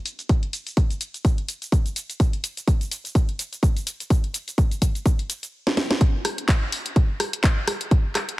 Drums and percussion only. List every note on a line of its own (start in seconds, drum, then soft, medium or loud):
0.06 closed hi-hat medium
0.06 cabasa medium
0.19 closed hi-hat soft
0.19 cabasa soft
0.29 kick loud
0.29 closed hi-hat medium
0.29 cabasa soft
0.43 closed hi-hat soft
0.53 closed hi-hat medium
0.53 cabasa medium
0.67 closed hi-hat soft
0.67 cabasa soft
0.77 kick loud
0.77 closed hi-hat medium
0.77 cabasa soft
0.90 closed hi-hat soft
0.90 cabasa soft
1.01 closed hi-hat medium
1.01 cabasa medium
1.14 closed hi-hat soft
1.14 cabasa soft
1.25 kick loud
1.25 closed hi-hat medium
1.25 cabasa soft
1.38 closed hi-hat soft
1.48 closed hi-hat medium
1.48 cabasa medium
1.62 closed hi-hat soft
1.62 cabasa soft
1.72 kick loud
1.72 closed hi-hat medium
1.72 cabasa soft
1.86 closed hi-hat soft
1.86 cabasa soft
1.96 closed hi-hat medium
1.96 cabasa medium
2.10 closed hi-hat soft
2.10 cabasa soft
2.20 kick loud
2.20 closed hi-hat medium
2.20 cabasa soft
2.33 closed hi-hat soft
2.44 closed hi-hat medium
2.44 tambourine medium
2.44 cabasa medium
2.57 closed hi-hat soft
2.57 tambourine medium
2.57 cabasa soft
2.68 kick loud
2.68 closed hi-hat medium
2.68 cabasa soft
2.81 closed hi-hat soft
2.81 cabasa soft
2.91 closed hi-hat medium
2.91 tambourine medium
2.91 cabasa medium
3.04 closed hi-hat soft
3.04 tambourine medium
3.04 cabasa soft
3.15 kick loud
3.15 closed hi-hat medium
3.15 cabasa soft
3.29 closed hi-hat soft
3.39 closed hi-hat medium
3.39 tambourine medium
3.39 cabasa medium
3.53 closed hi-hat soft
3.53 tambourine medium
3.53 cabasa soft
3.63 kick loud
3.63 closed hi-hat medium
3.63 cabasa soft
3.77 closed hi-hat soft
3.77 cabasa soft
3.86 closed hi-hat medium
3.86 tambourine medium
3.86 cabasa medium
4.00 closed hi-hat soft
4.00 tambourine medium
4.00 cabasa soft
4.10 kick loud
4.10 closed hi-hat medium
4.10 cabasa soft
4.24 closed hi-hat soft
4.33 closed hi-hat medium
4.33 tambourine loud
4.33 cabasa medium
4.48 closed hi-hat soft
4.48 tambourine soft
4.48 cabasa soft
4.58 kick loud
4.58 closed hi-hat medium
4.58 cabasa soft
4.71 closed hi-hat soft
4.71 cabasa soft
4.82 kick medium
4.82 closed hi-hat medium
4.82 cabasa medium
4.95 closed hi-hat soft
4.95 tambourine medium
4.95 cabasa soft
5.06 kick loud
5.06 closed hi-hat medium
5.06 cabasa soft
5.19 closed hi-hat soft
5.29 closed hi-hat medium
5.29 tambourine medium
5.29 cabasa medium
5.43 closed hi-hat soft
5.43 tambourine medium
5.43 cabasa soft
5.67 snare medium
5.77 snare medium
5.91 snare medium
6.01 kick loud
6.01 closed hi-hat medium
6.25 cross-stick medium
6.25 open hi-hat loud
6.38 closed hi-hat medium
6.48 kick loud
6.48 clap loud
6.48 closed hi-hat medium
6.72 open hi-hat loud
6.86 closed hi-hat medium
6.96 kick loud
6.96 closed hi-hat medium
7.20 cross-stick medium
7.20 open hi-hat loud
7.33 closed hi-hat medium
7.44 kick loud
7.44 clap loud
7.44 closed hi-hat medium
7.68 cross-stick medium
7.68 open hi-hat loud
7.81 closed hi-hat medium
7.91 kick loud
7.91 closed hi-hat medium
8.15 cross-stick medium
8.15 clap soft
8.15 open hi-hat loud
8.29 closed hi-hat medium